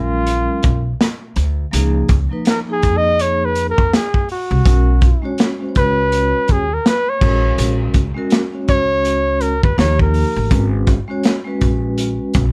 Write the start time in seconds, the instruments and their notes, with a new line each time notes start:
Already playing: upright bass A#1, vibraphone F#3 G#3 C#4 A#4, flugelhorn F4
0.27 closed hi-hat
0.63 upright bass B1, kick, closed hi-hat
1.01 snare, closed hi-hat
1.36 upright bass D2, closed hi-hat
1.71 upright bass C#2, vibraphone F3 A#3 D#4 G#4, closed hi-hat
2.09 upright bass C#2, kick, closed hi-hat
2.29 vibraphone F3 A#3 D#4 B4
2.45 flugelhorn A#4, snare, closed hi-hat
2.66 vibraphone F3 A#3 D#4 G#4
2.72 flugelhorn G#4
2.83 upright bass F2, kick, closed hi-hat
2.97 flugelhorn D#5
3.19 flugelhorn C#5, closed hi-hat
3.45 flugelhorn B4
3.55 closed hi-hat
3.70 flugelhorn A#4
3.78 upright bass F2, kick
3.93 flugelhorn G#4, snare, closed hi-hat
4.14 kick
4.29 flugelhorn F#4, open hi-hat
4.51 upright bass C2
4.63 upright bass B1, vibraphone G#3 C#4 F#4 A#4, kick, closed hi-hat
5.01 kick, closed hi-hat
5.22 vibraphone G#3 C#4 F#4 C#5
5.38 snare, closed hi-hat
5.59 vibraphone G#3 C#4 F#4 C5
5.69 vibraphone C#5
5.75 upright bass C#2, flugelhorn B4, kick, closed hi-hat
6.12 closed hi-hat
6.48 upright bass D#2, flugelhorn G#4, kick, closed hi-hat
6.74 flugelhorn A#4
6.86 flugelhorn B4, snare, closed hi-hat
7.09 flugelhorn C#5
7.19 upright bass A#1, vibraphone G#3 C#4 F#4 A#4, kick, crash
7.58 upright bass A#1, closed hi-hat
7.94 upright bass C#2, kick, closed hi-hat
8.14 vibraphone G#3 C#4 F#4 A#4
8.30 snare, closed hi-hat
8.51 vibraphone G#3 C#4 F#4 C#5
8.68 upright bass C#2, flugelhorn C#5, kick, closed hi-hat
9.05 closed hi-hat
9.41 flugelhorn A#4, closed hi-hat
9.63 upright bass D#2, flugelhorn B4, kick
9.76 upright bass D#2, vibraphone F3 A#3 D#4 G4, flugelhorn C#5, snare, closed hi-hat
9.99 flugelhorn A#4, kick
10.14 open hi-hat
10.36 upright bass A1
10.49 upright bass G#1, vibraphone G#3 C#4 F#4 B4, kick, closed hi-hat
10.87 kick, closed hi-hat
11.08 vibraphone G#3 C#4 F#4 C#5
11.23 snare, closed hi-hat
11.44 vibraphone G#3 C#4 F#4 B4
11.61 upright bass A#1, kick, closed hi-hat
11.98 closed hi-hat
12.34 upright bass B1, kick, closed hi-hat